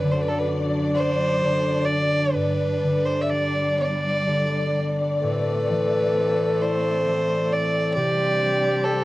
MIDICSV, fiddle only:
0, 0, Header, 1, 2, 480
1, 0, Start_track
1, 0, Tempo, 920245
1, 725, Tempo, 952381
1, 1202, Time_signature, 6, 3, 24, 8
1, 3125, Tempo, 899550
1, 4667, End_track
2, 0, Start_track
2, 0, Title_t, "Fiddle"
2, 0, Program_c, 0, 110
2, 0, Note_on_c, 0, 71, 81
2, 59, Note_on_c, 0, 72, 61
2, 67, Note_off_c, 0, 71, 0
2, 109, Note_on_c, 0, 71, 67
2, 117, Note_off_c, 0, 72, 0
2, 149, Note_on_c, 0, 69, 62
2, 157, Note_off_c, 0, 71, 0
2, 202, Note_on_c, 0, 71, 66
2, 210, Note_off_c, 0, 69, 0
2, 245, Note_off_c, 0, 71, 0
2, 497, Note_on_c, 0, 72, 107
2, 957, Note_on_c, 0, 74, 101
2, 964, Note_off_c, 0, 72, 0
2, 1202, Note_on_c, 0, 71, 91
2, 1209, Note_off_c, 0, 74, 0
2, 1565, Note_on_c, 0, 72, 79
2, 1573, Note_off_c, 0, 71, 0
2, 1646, Note_on_c, 0, 76, 60
2, 1654, Note_off_c, 0, 72, 0
2, 1688, Note_on_c, 0, 74, 83
2, 1695, Note_off_c, 0, 76, 0
2, 1930, Note_off_c, 0, 74, 0
2, 1939, Note_on_c, 0, 74, 92
2, 2459, Note_off_c, 0, 74, 0
2, 2655, Note_on_c, 0, 71, 81
2, 3373, Note_on_c, 0, 72, 93
2, 3381, Note_off_c, 0, 71, 0
2, 3858, Note_on_c, 0, 74, 86
2, 3866, Note_off_c, 0, 72, 0
2, 4076, Note_off_c, 0, 74, 0
2, 4079, Note_on_c, 0, 74, 97
2, 4559, Note_on_c, 0, 69, 79
2, 4567, Note_off_c, 0, 74, 0
2, 4667, Note_off_c, 0, 69, 0
2, 4667, End_track
0, 0, End_of_file